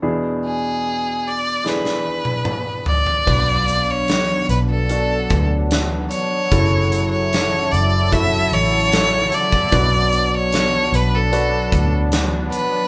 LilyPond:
<<
  \new Staff \with { instrumentName = "Violin" } { \time 4/4 \key b \dorian \tempo 4 = 75 r8 gis'4 d''8 b'4. d''8~ | d''8. cis''8. b'16 a'4 r8. cis''8~ | cis''8. cis''8. d''8 e''8 cis''4 d''8~ | d''8. cis''8. b'16 a'4 r8. b'8 | }
  \new Staff \with { instrumentName = "Grand piano" } { \time 4/4 \key b \dorian <d' e' gis'>2 <d' e' gis'>2 | <d' fis' b'>2 <d' fis' a'>2 | <e' fis' a'>2 <e' fis' a'>2 | <d' fis' b'>2 <d' fis' b'>2 | }
  \new Staff \with { instrumentName = "Grand piano" } { \clef bass \time 4/4 \key b \dorian <e, b,>1 | r1 | cis4. r2 r8 | <b, fis>4. r2 r8 | }
  \new Staff \with { instrumentName = "Analog synth pad" } { \time 4/4 \key b \dorian r1 | <fis b d'>1 | <cis e' a'>1 | <b d'>1 | }
  \new Staff \with { instrumentName = "Fingered electric bass" } { \clef bass \time 4/4 \key b \dorian r1 | b,,4. b,,4 d,4 r8 | fis,,4. fis,,4 a,,4 r8 | b,,4. b,,4 d,4 r8 | }
  \new DrumStaff \with { instrumentName = "Drums" } \drummode { \time 4/4 r4 r4 sn16 sn8 tommh16 toml8 tomfh16 tomfh16 | <cymc bd>8 hh8 <hh sn>8 hh8 hh8 <hh bd>8 <hh sn>8 hh8 | <hh bd>8 hh8 <hh sn>8 hh8 <hh bd>8 hh8 <hh sn>8 hh16 bd16 | <hh bd>8 hh8 <hh sn>8 hh8 hh8 <hh bd>8 <hh sn>8 hh8 | }
>>